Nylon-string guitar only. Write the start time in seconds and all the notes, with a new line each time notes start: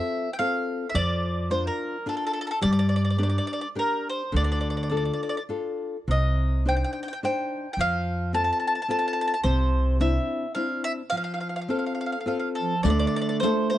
Already playing: C4 F4 A4
0.39 C4 F4 A4
0.94 F3
1.50 D4 F4 A#4
2.06 D4 F4 A#4
2.61 G3
3.19 D4 G4 A#4
3.75 D4 G4 A#4
4.32 D3
4.91 D4 F4 A4
5.49 D4 F4 A4
6.08 C3
6.65 D4 D#4 C5
7.23 D4 D#4 C5
7.79 F3
8.33 C4 F4 A4
8.88 C4 F4 A4
9.44 C3
10.00 C4 D4 E4
10.56 C4 D4 E4
11.12 F3
11.68 C4 F4 A4
12.26 C4 F4 A4
12.85 D3
13.44 D4 F4 A4